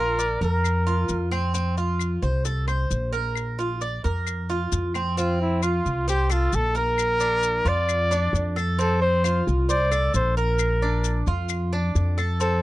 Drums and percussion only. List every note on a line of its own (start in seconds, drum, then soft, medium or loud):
0.19 maracas medium
0.42 maracas soft
0.64 claves medium
0.64 maracas medium
0.87 maracas soft
1.09 maracas medium
1.32 claves medium
1.32 maracas soft
1.54 maracas medium
1.78 maracas soft
1.99 claves medium
1.99 maracas medium
2.23 maracas soft
2.45 maracas medium
2.68 claves medium
2.68 maracas soft
2.91 maracas medium
3.13 maracas soft
3.35 claves medium
3.35 maracas medium
3.60 maracas soft
3.81 maracas medium
4.05 maracas soft
4.27 claves medium
4.27 maracas medium
4.50 maracas soft
4.72 maracas medium
4.94 claves medium
4.94 maracas soft
5.18 maracas medium
5.63 claves medium
5.63 maracas medium
5.86 maracas soft
6.08 maracas medium
6.30 claves medium
6.30 maracas medium
6.53 maracas medium
6.76 maracas soft
6.98 claves medium
6.98 maracas medium
7.20 maracas medium
7.43 maracas medium
7.66 maracas soft
7.89 claves medium
7.89 maracas medium
8.12 maracas medium
8.35 maracas medium
8.57 claves medium
8.57 maracas soft
8.80 maracas medium
9.24 claves medium
9.24 maracas medium
9.48 maracas soft
9.70 maracas medium
9.92 claves medium
9.92 maracas medium
10.14 maracas medium
10.37 maracas soft
10.59 claves medium
10.59 maracas medium
11.04 maracas medium
11.27 maracas soft
11.49 claves medium
11.49 maracas medium
11.96 maracas medium
12.18 claves medium
12.18 maracas soft
12.41 maracas medium